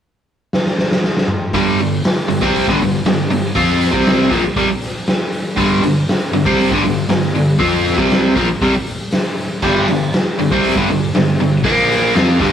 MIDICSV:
0, 0, Header, 1, 6, 480
1, 0, Start_track
1, 0, Tempo, 505476
1, 1457, Time_signature, 4, 2, 24, 8
1, 11892, End_track
2, 0, Start_track
2, 0, Title_t, "Overdriven electric guitar"
2, 0, Program_c, 0, 29
2, 1462, Note_on_c, 0, 43, 98
2, 1464, Note_on_c, 0, 50, 109
2, 1480, Note_on_c, 0, 55, 105
2, 1692, Note_off_c, 0, 43, 0
2, 1693, Note_off_c, 0, 50, 0
2, 1701, Note_off_c, 0, 55, 0
2, 1708, Note_on_c, 0, 43, 58
2, 1709, Note_on_c, 0, 50, 71
2, 1894, Note_off_c, 0, 43, 0
2, 1895, Note_off_c, 0, 50, 0
2, 2169, Note_on_c, 0, 43, 66
2, 2171, Note_on_c, 0, 50, 73
2, 2292, Note_off_c, 0, 50, 0
2, 2293, Note_off_c, 0, 43, 0
2, 2295, Note_on_c, 0, 48, 85
2, 2305, Note_on_c, 0, 55, 80
2, 2305, Note_on_c, 0, 60, 95
2, 2529, Note_off_c, 0, 48, 0
2, 2533, Note_off_c, 0, 55, 0
2, 2534, Note_off_c, 0, 60, 0
2, 2554, Note_on_c, 0, 43, 96
2, 2558, Note_on_c, 0, 50, 107
2, 2658, Note_off_c, 0, 43, 0
2, 2660, Note_off_c, 0, 50, 0
2, 2680, Note_on_c, 0, 50, 64
2, 2685, Note_on_c, 0, 43, 66
2, 2860, Note_off_c, 0, 50, 0
2, 2863, Note_off_c, 0, 43, 0
2, 2907, Note_on_c, 0, 43, 58
2, 2910, Note_on_c, 0, 50, 80
2, 3094, Note_off_c, 0, 43, 0
2, 3095, Note_off_c, 0, 50, 0
2, 3139, Note_on_c, 0, 43, 71
2, 3142, Note_on_c, 0, 50, 65
2, 3329, Note_off_c, 0, 43, 0
2, 3331, Note_off_c, 0, 50, 0
2, 3375, Note_on_c, 0, 53, 103
2, 3380, Note_on_c, 0, 60, 103
2, 3387, Note_on_c, 0, 65, 110
2, 3717, Note_off_c, 0, 53, 0
2, 3718, Note_off_c, 0, 60, 0
2, 3721, Note_on_c, 0, 48, 93
2, 3726, Note_off_c, 0, 65, 0
2, 3730, Note_on_c, 0, 55, 87
2, 3730, Note_on_c, 0, 60, 99
2, 4081, Note_off_c, 0, 48, 0
2, 4086, Note_off_c, 0, 55, 0
2, 4086, Note_off_c, 0, 60, 0
2, 4093, Note_on_c, 0, 46, 93
2, 4103, Note_on_c, 0, 53, 113
2, 4207, Note_off_c, 0, 46, 0
2, 4213, Note_off_c, 0, 53, 0
2, 4337, Note_on_c, 0, 48, 91
2, 4344, Note_on_c, 0, 55, 111
2, 4449, Note_off_c, 0, 48, 0
2, 4453, Note_off_c, 0, 55, 0
2, 5286, Note_on_c, 0, 43, 101
2, 5296, Note_on_c, 0, 50, 122
2, 5296, Note_on_c, 0, 55, 112
2, 5524, Note_off_c, 0, 43, 0
2, 5529, Note_off_c, 0, 50, 0
2, 5529, Note_off_c, 0, 55, 0
2, 5540, Note_on_c, 0, 43, 63
2, 5549, Note_on_c, 0, 50, 80
2, 5730, Note_off_c, 0, 43, 0
2, 5735, Note_off_c, 0, 50, 0
2, 6014, Note_on_c, 0, 43, 63
2, 6017, Note_on_c, 0, 50, 77
2, 6123, Note_off_c, 0, 50, 0
2, 6127, Note_on_c, 0, 48, 96
2, 6131, Note_on_c, 0, 55, 92
2, 6135, Note_off_c, 0, 43, 0
2, 6136, Note_on_c, 0, 60, 103
2, 6365, Note_off_c, 0, 48, 0
2, 6367, Note_off_c, 0, 55, 0
2, 6369, Note_off_c, 0, 60, 0
2, 6379, Note_on_c, 0, 43, 93
2, 6392, Note_on_c, 0, 50, 113
2, 6484, Note_off_c, 0, 43, 0
2, 6490, Note_off_c, 0, 50, 0
2, 6495, Note_on_c, 0, 43, 67
2, 6501, Note_on_c, 0, 50, 65
2, 6688, Note_off_c, 0, 43, 0
2, 6691, Note_off_c, 0, 50, 0
2, 6733, Note_on_c, 0, 43, 70
2, 6738, Note_on_c, 0, 50, 66
2, 6927, Note_off_c, 0, 43, 0
2, 6929, Note_off_c, 0, 50, 0
2, 6979, Note_on_c, 0, 43, 72
2, 6985, Note_on_c, 0, 50, 77
2, 7170, Note_off_c, 0, 43, 0
2, 7173, Note_off_c, 0, 50, 0
2, 7204, Note_on_c, 0, 53, 106
2, 7209, Note_on_c, 0, 60, 108
2, 7220, Note_on_c, 0, 65, 116
2, 7563, Note_off_c, 0, 53, 0
2, 7566, Note_off_c, 0, 60, 0
2, 7570, Note_on_c, 0, 48, 93
2, 7571, Note_off_c, 0, 65, 0
2, 7579, Note_on_c, 0, 55, 98
2, 7581, Note_on_c, 0, 60, 99
2, 7926, Note_off_c, 0, 48, 0
2, 7931, Note_off_c, 0, 55, 0
2, 7932, Note_off_c, 0, 60, 0
2, 7935, Note_on_c, 0, 46, 92
2, 7942, Note_on_c, 0, 53, 110
2, 8049, Note_off_c, 0, 46, 0
2, 8053, Note_off_c, 0, 53, 0
2, 8184, Note_on_c, 0, 48, 94
2, 8198, Note_on_c, 0, 55, 101
2, 8293, Note_off_c, 0, 48, 0
2, 8301, Note_off_c, 0, 55, 0
2, 9145, Note_on_c, 0, 43, 115
2, 9149, Note_on_c, 0, 50, 110
2, 9156, Note_on_c, 0, 55, 117
2, 9374, Note_off_c, 0, 43, 0
2, 9376, Note_off_c, 0, 50, 0
2, 9380, Note_off_c, 0, 55, 0
2, 9395, Note_on_c, 0, 43, 75
2, 9407, Note_on_c, 0, 50, 71
2, 9578, Note_off_c, 0, 43, 0
2, 9585, Note_off_c, 0, 50, 0
2, 9863, Note_on_c, 0, 43, 64
2, 9870, Note_on_c, 0, 50, 65
2, 9980, Note_off_c, 0, 50, 0
2, 9981, Note_off_c, 0, 43, 0
2, 9984, Note_on_c, 0, 48, 91
2, 9989, Note_on_c, 0, 55, 100
2, 9996, Note_on_c, 0, 60, 99
2, 10214, Note_off_c, 0, 48, 0
2, 10216, Note_off_c, 0, 55, 0
2, 10220, Note_off_c, 0, 60, 0
2, 10220, Note_on_c, 0, 43, 94
2, 10225, Note_on_c, 0, 50, 99
2, 10327, Note_off_c, 0, 43, 0
2, 10334, Note_off_c, 0, 50, 0
2, 10339, Note_on_c, 0, 43, 63
2, 10350, Note_on_c, 0, 50, 75
2, 10530, Note_off_c, 0, 43, 0
2, 10536, Note_off_c, 0, 50, 0
2, 10590, Note_on_c, 0, 50, 72
2, 10593, Note_on_c, 0, 43, 71
2, 10776, Note_off_c, 0, 50, 0
2, 10777, Note_off_c, 0, 43, 0
2, 10825, Note_on_c, 0, 43, 70
2, 10825, Note_on_c, 0, 50, 68
2, 11014, Note_off_c, 0, 43, 0
2, 11038, Note_off_c, 0, 50, 0
2, 11038, Note_on_c, 0, 46, 97
2, 11052, Note_on_c, 0, 53, 103
2, 11053, Note_on_c, 0, 58, 115
2, 11521, Note_off_c, 0, 46, 0
2, 11522, Note_off_c, 0, 53, 0
2, 11528, Note_off_c, 0, 58, 0
2, 11534, Note_on_c, 0, 53, 93
2, 11541, Note_on_c, 0, 60, 102
2, 11552, Note_on_c, 0, 65, 109
2, 11769, Note_off_c, 0, 53, 0
2, 11772, Note_off_c, 0, 60, 0
2, 11772, Note_on_c, 0, 43, 95
2, 11778, Note_off_c, 0, 65, 0
2, 11782, Note_on_c, 0, 50, 91
2, 11783, Note_on_c, 0, 55, 93
2, 11892, Note_off_c, 0, 43, 0
2, 11892, Note_off_c, 0, 50, 0
2, 11892, Note_off_c, 0, 55, 0
2, 11892, End_track
3, 0, Start_track
3, 0, Title_t, "Picked electric bass"
3, 0, Program_c, 1, 34
3, 1461, Note_on_c, 1, 31, 97
3, 1682, Note_off_c, 1, 31, 0
3, 1704, Note_on_c, 1, 31, 77
3, 1924, Note_off_c, 1, 31, 0
3, 2193, Note_on_c, 1, 31, 75
3, 2293, Note_off_c, 1, 31, 0
3, 2299, Note_on_c, 1, 36, 88
3, 2521, Note_off_c, 1, 36, 0
3, 2542, Note_on_c, 1, 31, 100
3, 2651, Note_off_c, 1, 31, 0
3, 2663, Note_on_c, 1, 31, 85
3, 2883, Note_off_c, 1, 31, 0
3, 2903, Note_on_c, 1, 31, 84
3, 3123, Note_off_c, 1, 31, 0
3, 3146, Note_on_c, 1, 31, 89
3, 3365, Note_off_c, 1, 31, 0
3, 3378, Note_on_c, 1, 41, 97
3, 3712, Note_off_c, 1, 41, 0
3, 3736, Note_on_c, 1, 36, 92
3, 4071, Note_off_c, 1, 36, 0
3, 4091, Note_on_c, 1, 34, 94
3, 4198, Note_off_c, 1, 34, 0
3, 4334, Note_on_c, 1, 36, 98
3, 4447, Note_off_c, 1, 36, 0
3, 5295, Note_on_c, 1, 31, 105
3, 5519, Note_off_c, 1, 31, 0
3, 5523, Note_on_c, 1, 31, 89
3, 5752, Note_off_c, 1, 31, 0
3, 5991, Note_on_c, 1, 31, 79
3, 6114, Note_off_c, 1, 31, 0
3, 6137, Note_on_c, 1, 36, 93
3, 6360, Note_off_c, 1, 36, 0
3, 6376, Note_on_c, 1, 31, 94
3, 6488, Note_off_c, 1, 31, 0
3, 6498, Note_on_c, 1, 31, 84
3, 6715, Note_off_c, 1, 31, 0
3, 6721, Note_on_c, 1, 31, 91
3, 6952, Note_off_c, 1, 31, 0
3, 6965, Note_on_c, 1, 31, 86
3, 7194, Note_off_c, 1, 31, 0
3, 7219, Note_on_c, 1, 41, 99
3, 7553, Note_off_c, 1, 41, 0
3, 7583, Note_on_c, 1, 36, 94
3, 7915, Note_off_c, 1, 36, 0
3, 7944, Note_on_c, 1, 34, 90
3, 8047, Note_off_c, 1, 34, 0
3, 8186, Note_on_c, 1, 36, 100
3, 8293, Note_off_c, 1, 36, 0
3, 9145, Note_on_c, 1, 31, 102
3, 9365, Note_off_c, 1, 31, 0
3, 9382, Note_on_c, 1, 31, 82
3, 9603, Note_off_c, 1, 31, 0
3, 9864, Note_on_c, 1, 31, 74
3, 9973, Note_off_c, 1, 31, 0
3, 9979, Note_on_c, 1, 36, 97
3, 10202, Note_off_c, 1, 36, 0
3, 10216, Note_on_c, 1, 31, 93
3, 10329, Note_off_c, 1, 31, 0
3, 10355, Note_on_c, 1, 31, 84
3, 10571, Note_off_c, 1, 31, 0
3, 10583, Note_on_c, 1, 31, 88
3, 10804, Note_off_c, 1, 31, 0
3, 10816, Note_on_c, 1, 31, 94
3, 11040, Note_off_c, 1, 31, 0
3, 11059, Note_on_c, 1, 34, 91
3, 11505, Note_off_c, 1, 34, 0
3, 11542, Note_on_c, 1, 41, 98
3, 11764, Note_off_c, 1, 41, 0
3, 11773, Note_on_c, 1, 31, 97
3, 11892, Note_off_c, 1, 31, 0
3, 11892, End_track
4, 0, Start_track
4, 0, Title_t, "Muted overdriven electric guitar strokes"
4, 4219, Note_on_c, 9, 29, 59
4, 4314, Note_off_c, 9, 29, 0
4, 8059, Note_on_c, 9, 29, 56
4, 8154, Note_off_c, 9, 29, 0
4, 11892, End_track
5, 0, Start_track
5, 0, Title_t, "Muted picked electric bass strokes"
5, 4203, Note_on_c, 9, 29, 39
5, 4298, Note_off_c, 9, 29, 0
5, 8053, Note_on_c, 9, 29, 42
5, 8148, Note_off_c, 9, 29, 0
5, 11892, End_track
6, 0, Start_track
6, 0, Title_t, "Drums"
6, 505, Note_on_c, 9, 38, 82
6, 600, Note_off_c, 9, 38, 0
6, 625, Note_on_c, 9, 38, 70
6, 720, Note_off_c, 9, 38, 0
6, 745, Note_on_c, 9, 38, 84
6, 840, Note_off_c, 9, 38, 0
6, 867, Note_on_c, 9, 38, 94
6, 961, Note_off_c, 9, 38, 0
6, 985, Note_on_c, 9, 38, 87
6, 1080, Note_off_c, 9, 38, 0
6, 1109, Note_on_c, 9, 38, 90
6, 1204, Note_off_c, 9, 38, 0
6, 1214, Note_on_c, 9, 45, 94
6, 1309, Note_off_c, 9, 45, 0
6, 1456, Note_on_c, 9, 36, 94
6, 1458, Note_on_c, 9, 46, 77
6, 1551, Note_off_c, 9, 36, 0
6, 1553, Note_off_c, 9, 46, 0
6, 1700, Note_on_c, 9, 46, 70
6, 1795, Note_off_c, 9, 46, 0
6, 1935, Note_on_c, 9, 46, 76
6, 1948, Note_on_c, 9, 38, 110
6, 2030, Note_off_c, 9, 46, 0
6, 2043, Note_off_c, 9, 38, 0
6, 2182, Note_on_c, 9, 46, 66
6, 2277, Note_off_c, 9, 46, 0
6, 2300, Note_on_c, 9, 36, 98
6, 2395, Note_off_c, 9, 36, 0
6, 2427, Note_on_c, 9, 46, 94
6, 2522, Note_off_c, 9, 46, 0
6, 2541, Note_on_c, 9, 36, 99
6, 2636, Note_off_c, 9, 36, 0
6, 2660, Note_on_c, 9, 46, 63
6, 2674, Note_on_c, 9, 38, 33
6, 2755, Note_off_c, 9, 46, 0
6, 2768, Note_off_c, 9, 38, 0
6, 2895, Note_on_c, 9, 46, 90
6, 2909, Note_on_c, 9, 38, 115
6, 2990, Note_off_c, 9, 46, 0
6, 3004, Note_off_c, 9, 38, 0
6, 3144, Note_on_c, 9, 46, 61
6, 3239, Note_off_c, 9, 46, 0
6, 3374, Note_on_c, 9, 46, 80
6, 3377, Note_on_c, 9, 36, 98
6, 3469, Note_off_c, 9, 46, 0
6, 3472, Note_off_c, 9, 36, 0
6, 3617, Note_on_c, 9, 46, 68
6, 3631, Note_on_c, 9, 38, 36
6, 3712, Note_off_c, 9, 46, 0
6, 3725, Note_off_c, 9, 38, 0
6, 3735, Note_on_c, 9, 36, 109
6, 3830, Note_off_c, 9, 36, 0
6, 3853, Note_on_c, 9, 46, 82
6, 3866, Note_on_c, 9, 38, 119
6, 3948, Note_off_c, 9, 46, 0
6, 3961, Note_off_c, 9, 38, 0
6, 4093, Note_on_c, 9, 36, 108
6, 4094, Note_on_c, 9, 46, 64
6, 4188, Note_off_c, 9, 36, 0
6, 4189, Note_off_c, 9, 46, 0
6, 4332, Note_on_c, 9, 36, 118
6, 4333, Note_on_c, 9, 46, 80
6, 4427, Note_off_c, 9, 36, 0
6, 4428, Note_off_c, 9, 46, 0
6, 4571, Note_on_c, 9, 46, 66
6, 4584, Note_on_c, 9, 38, 32
6, 4666, Note_off_c, 9, 46, 0
6, 4679, Note_off_c, 9, 38, 0
6, 4809, Note_on_c, 9, 46, 81
6, 4822, Note_on_c, 9, 38, 107
6, 4904, Note_off_c, 9, 46, 0
6, 4917, Note_off_c, 9, 38, 0
6, 5054, Note_on_c, 9, 46, 64
6, 5149, Note_off_c, 9, 46, 0
6, 5290, Note_on_c, 9, 36, 96
6, 5290, Note_on_c, 9, 46, 67
6, 5385, Note_off_c, 9, 36, 0
6, 5385, Note_off_c, 9, 46, 0
6, 5535, Note_on_c, 9, 46, 68
6, 5549, Note_on_c, 9, 38, 33
6, 5630, Note_off_c, 9, 46, 0
6, 5643, Note_off_c, 9, 38, 0
6, 5773, Note_on_c, 9, 46, 81
6, 5786, Note_on_c, 9, 38, 111
6, 5868, Note_off_c, 9, 46, 0
6, 5881, Note_off_c, 9, 38, 0
6, 6012, Note_on_c, 9, 46, 63
6, 6107, Note_off_c, 9, 46, 0
6, 6133, Note_on_c, 9, 36, 104
6, 6228, Note_off_c, 9, 36, 0
6, 6261, Note_on_c, 9, 46, 94
6, 6356, Note_off_c, 9, 46, 0
6, 6375, Note_on_c, 9, 36, 94
6, 6470, Note_off_c, 9, 36, 0
6, 6500, Note_on_c, 9, 46, 66
6, 6513, Note_on_c, 9, 38, 37
6, 6595, Note_off_c, 9, 46, 0
6, 6608, Note_off_c, 9, 38, 0
6, 6731, Note_on_c, 9, 46, 85
6, 6744, Note_on_c, 9, 38, 119
6, 6826, Note_off_c, 9, 46, 0
6, 6839, Note_off_c, 9, 38, 0
6, 6980, Note_on_c, 9, 46, 67
6, 7075, Note_off_c, 9, 46, 0
6, 7214, Note_on_c, 9, 46, 84
6, 7216, Note_on_c, 9, 36, 103
6, 7309, Note_off_c, 9, 46, 0
6, 7311, Note_off_c, 9, 36, 0
6, 7464, Note_on_c, 9, 46, 73
6, 7478, Note_on_c, 9, 38, 35
6, 7559, Note_off_c, 9, 46, 0
6, 7572, Note_off_c, 9, 38, 0
6, 7577, Note_on_c, 9, 36, 115
6, 7672, Note_off_c, 9, 36, 0
6, 7698, Note_on_c, 9, 46, 79
6, 7711, Note_on_c, 9, 38, 120
6, 7793, Note_off_c, 9, 46, 0
6, 7806, Note_off_c, 9, 38, 0
6, 7939, Note_on_c, 9, 36, 107
6, 7940, Note_on_c, 9, 46, 65
6, 8034, Note_off_c, 9, 36, 0
6, 8035, Note_off_c, 9, 46, 0
6, 8180, Note_on_c, 9, 46, 83
6, 8181, Note_on_c, 9, 36, 123
6, 8275, Note_off_c, 9, 46, 0
6, 8276, Note_off_c, 9, 36, 0
6, 8420, Note_on_c, 9, 46, 57
6, 8515, Note_off_c, 9, 46, 0
6, 8653, Note_on_c, 9, 46, 86
6, 8666, Note_on_c, 9, 38, 108
6, 8748, Note_off_c, 9, 46, 0
6, 8761, Note_off_c, 9, 38, 0
6, 8897, Note_on_c, 9, 46, 61
6, 8992, Note_off_c, 9, 46, 0
6, 9136, Note_on_c, 9, 49, 90
6, 9139, Note_on_c, 9, 36, 94
6, 9231, Note_off_c, 9, 49, 0
6, 9234, Note_off_c, 9, 36, 0
6, 9381, Note_on_c, 9, 46, 62
6, 9394, Note_on_c, 9, 38, 35
6, 9475, Note_off_c, 9, 46, 0
6, 9489, Note_off_c, 9, 38, 0
6, 9616, Note_on_c, 9, 46, 85
6, 9630, Note_on_c, 9, 38, 115
6, 9711, Note_off_c, 9, 46, 0
6, 9724, Note_off_c, 9, 38, 0
6, 9862, Note_on_c, 9, 46, 59
6, 9957, Note_off_c, 9, 46, 0
6, 9979, Note_on_c, 9, 36, 103
6, 10074, Note_off_c, 9, 36, 0
6, 10099, Note_on_c, 9, 46, 97
6, 10194, Note_off_c, 9, 46, 0
6, 10216, Note_on_c, 9, 36, 108
6, 10311, Note_off_c, 9, 36, 0
6, 10338, Note_on_c, 9, 46, 60
6, 10352, Note_on_c, 9, 38, 32
6, 10433, Note_off_c, 9, 46, 0
6, 10447, Note_off_c, 9, 38, 0
6, 10574, Note_on_c, 9, 46, 81
6, 10587, Note_on_c, 9, 38, 110
6, 10669, Note_off_c, 9, 46, 0
6, 10682, Note_off_c, 9, 38, 0
6, 10814, Note_on_c, 9, 46, 58
6, 10909, Note_off_c, 9, 46, 0
6, 11054, Note_on_c, 9, 36, 102
6, 11057, Note_on_c, 9, 46, 83
6, 11149, Note_off_c, 9, 36, 0
6, 11152, Note_off_c, 9, 46, 0
6, 11301, Note_on_c, 9, 46, 69
6, 11315, Note_on_c, 9, 38, 38
6, 11396, Note_off_c, 9, 46, 0
6, 11410, Note_off_c, 9, 38, 0
6, 11539, Note_on_c, 9, 46, 84
6, 11552, Note_on_c, 9, 38, 116
6, 11634, Note_off_c, 9, 46, 0
6, 11647, Note_off_c, 9, 38, 0
6, 11774, Note_on_c, 9, 36, 109
6, 11782, Note_on_c, 9, 46, 69
6, 11869, Note_off_c, 9, 36, 0
6, 11877, Note_off_c, 9, 46, 0
6, 11892, End_track
0, 0, End_of_file